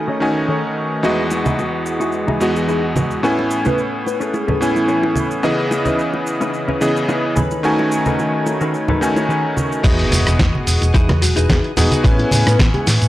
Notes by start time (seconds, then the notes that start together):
Already playing: D#3 A3 C#4 D#4 F#4 B4 D#5 G#5
0.07 D#3 C#4 D#4 G#4 A4 C#5
0.20 D#3 A3 C#4 D#4 F#4 G#5
0.48 D#3 C#4 D#4 G#4 A4 C#5
0.76 muted clean electric guitar stroke
1.03 E2 E3 G#3 B3 D#4 E4 F#4 G#4 D#5, cabasa
1.31 high bongo, cabasa
1.45 D#4 E4 F#4 G#4, high conga, cabasa
1.59 high bongo, cabasa
1.73 muted clean electric guitar stroke
1.86 cabasa
2.00 D#4 E4 F#4 G#4, high bongo, cabasa
2.12 cabasa
2.28 D#4 E4 F#4 G#4, high bongo, high conga
2.40 E2 G#3 B3 F#4 D#5, cabasa
2.56 G#4, cabasa
2.68 D#4 E4 F#4 G#4, high bongo, cabasa
2.96 muted clean electric guitar stroke, high bongo, high conga, low conga, cabasa
3.11 cabasa
3.23 A2 A3 B3 C#4 E4 G#4 A4 B4 G#5, cabasa
3.39 high bongo
3.51 cabasa
3.65 C#4 G#4 A4 B4, high bongo, high conga, cabasa
3.78 cabasa
3.93 muted clean electric guitar stroke
4.06 B4, high bongo, cabasa
4.20 C#4 G#4 A4 B4, cabasa
4.33 G#4, high bongo, cabasa
4.48 C#4 G#4 A4 B4, high conga, low conga
4.61 A2 B3 C#4 E4 G#5, cabasa
4.76 E4, high bongo, cabasa
4.88 C#4 G#4 A4 B4, cabasa
5.03 high bongo
5.15 muted clean electric guitar stroke, high conga, cabasa
5.31 cabasa
5.43 C#3 E3 B3 C#4 D#4 E4 G#4 B4 D#5, high bongo, cabasa
5.71 high bongo, cabasa
5.85 C#4 D#4 E4 B4, high conga, cabasa
5.99 cabasa
6.13 muted clean electric guitar stroke, high bongo
6.27 cabasa
6.40 C#4 D#4 E4 B4, high bongo, cabasa
6.54 cabasa
6.68 C#4 D#4 E4 B4, high conga
6.81 C#3 E3 B3 G#4 D#5, high bongo, cabasa
6.97 cabasa
7.08 C#4 D#4 E4 B4, high bongo, cabasa
7.36 D#3 A3 C#4 D#4 G#4 A4 B4 G#5, high conga, low conga, cabasa
7.51 high bongo, cabasa
7.63 D#3 A3 C#4 D#4 F#4 G#5, cabasa
7.79 high bongo
7.92 cabasa
8.06 D#3 C#4 D#4 G#4 A4 B4, high conga, cabasa
8.19 high bongo, cabasa
8.33 muted clean electric guitar stroke
8.46 high bongo, cabasa
8.61 D#3 C#4 D#4 G#4 A4 B4, cabasa
8.74 cabasa
8.88 D#3 C#4 D#4 G#4 A4 B4, high bongo, high conga, low conga
9.01 D#3 A3 C#4 D#4 F#4 G#5, cabasa
9.16 high bongo, cabasa
9.29 D#3 C#4 D#4 G#4 A4 B4, cabasa
9.57 muted clean electric guitar stroke, high bongo, high conga, cabasa
9.72 cabasa
9.84 E2 B3 D#4 E4 F#4 G#4 D#5 F#5 D#6, kick, closed hi-hat, crash, impact, cabasa
9.99 open hi-hat
10.12 E1, open hi-hat, high bongo, high conga, cabasa
10.27 E1, cross-stick, closed hi-hat, cabasa
10.39 E2, kick, snare, closed hi-hat, high bongo, cabasa
10.55 high conga
10.67 E1, open hi-hat, cabasa
10.81 E1, closed hi-hat, high bongo, cabasa
10.94 E2 D#4 E4 F#4 G#4, kick, closed hi-hat, cabasa
11.09 cross-stick, closed hi-hat, high bongo, high conga
11.22 E1 F#4, muted clean electric guitar stroke, open hi-hat, cabasa
11.36 E1 D#4 E4 F#4 G#4 B4, closed hi-hat, cabasa
11.49 E2 G#4, kick, snare, closed hi-hat, high bongo, high conga, cabasa
11.64 closed hi-hat
11.77 E1 B3 D#4 F#4 G#4, open hi-hat, high bongo, low conga, cabasa
11.91 closed hi-hat, high conga, cabasa
12.04 A1 B3 C#4 E4 G#4 A4 B4 G#5 C#6, kick, closed hi-hat, cabasa
12.19 closed hi-hat, high bongo
12.31 A2, open hi-hat, high conga, cabasa
12.47 A2 B4, cross-stick, closed hi-hat, high bongo, cabasa
12.59 A1, kick, snare, closed hi-hat, cabasa
12.74 G#4, closed hi-hat, high conga
12.87 A2, snare, open hi-hat, high bongo, cabasa
13.02 A2, closed hi-hat, cabasa